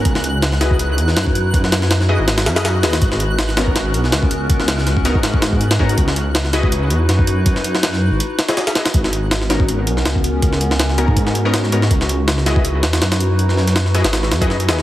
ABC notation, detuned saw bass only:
X:1
M:4/4
L:1/16
Q:"Swing 16ths" 1/4=162
K:G#m
V:1 name="Detuned saw bass" clef=bass
C,,8- C,,2 E,,2 F,,4- | F,,6- F,, G,,,3 F,,4 D,,2 | G,,,8- G,,,2 B,,,2 C,,4- | C,,6- C,, G,,6- G,, G,,2 |
C,,8- C,,2 E,,2 F,,4- | F,,6- F,, G,,, z8 | G,,,8- G,,,2 B,,,2 C,,4- | C,,6- C,, G,,6- G,, G,,2 |
C,,8- C,,2 E,,2 F,,4- | F,,6- F,, G,,,3 F,,4 D,,2 |]